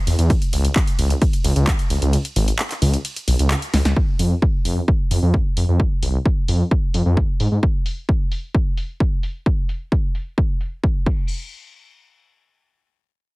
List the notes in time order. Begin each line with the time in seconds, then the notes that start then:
0.07 E2, open hi-hat, ride
0.19 E2, closed hi-hat, ride
0.30 kick, closed hi-hat, ride
0.42 closed hi-hat, ride
0.53 C#2, open hi-hat, ride
0.65 closed hi-hat, ride
0.76 kick, clap, closed hi-hat, ride
0.87 closed hi-hat, ride
0.99 C#2, open hi-hat, ride
1.10 closed hi-hat, ride
1.22 kick, closed hi-hat, ride
1.33 closed hi-hat, ride
1.44 C#2, open hi-hat, ride
1.56 C#2, closed hi-hat, ride
1.67 kick, clap, closed hi-hat, ride
1.79 closed hi-hat, ride
1.90 C#2, open hi-hat, ride
2.02 C#2, closed hi-hat, ride
2.13 closed hi-hat, ride
2.25 closed hi-hat, ride
2.36 G#1, open hi-hat, ride
2.48 closed hi-hat, ride
2.59 clap, closed hi-hat, ride
2.71 clap, closed hi-hat, ride
2.82 C#2, open hi-hat, ride
2.94 closed hi-hat, ride
3.05 closed hi-hat, ride
3.16 closed hi-hat, ride
3.28 B1, open hi-hat, ride
3.39 C#2, closed hi-hat, ride
3.51 clap, closed hi-hat, ride
3.62 closed hi-hat, ride
3.74 C#2, snare, open hi-hat, ride
3.85 C#2, snare, closed hi-hat, ride
3.96 kick
4.19 F2, open hi-hat
4.42 kick
4.65 F2, open hi-hat
4.88 kick
5.11 F2, open hi-hat
5.23 F2
5.34 kick
5.57 F2, open hi-hat
5.68 F2
5.80 kick
6.03 C2, open hi-hat
6.26 kick
6.48 F2, open hi-hat
6.71 kick
6.94 F2, open hi-hat
7.06 F2
7.17 kick
7.40 G#2, open hi-hat
7.52 G#2
7.63 kick
7.86 open hi-hat
8.09 kick
8.32 open hi-hat
8.55 kick
8.77 open hi-hat
9.00 kick
9.23 open hi-hat
9.46 kick
9.69 open hi-hat
9.92 kick
10.15 open hi-hat
10.38 kick
10.61 open hi-hat
10.84 kick
11.06 kick, crash